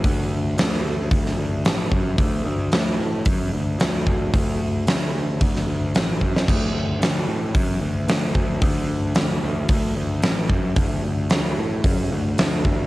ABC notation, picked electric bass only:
X:1
M:4/4
L:1/8
Q:1/4=112
K:D
V:1 name="Picked electric bass" clef=bass
D,,2 D,, D,, D,, D,, A,,, F,, | D,, D,, D,, A,, F,, D,, D,, D,, | D,,2 D,, D,, D,, D,, A,,, F,, | D,, D,, D,, A,, F,, D,, D,, D,, |
D,,2 D,, D,, D,, D,, A,,, F,, | D,, D,, D,, A,, F,, D,, D,, D,, |]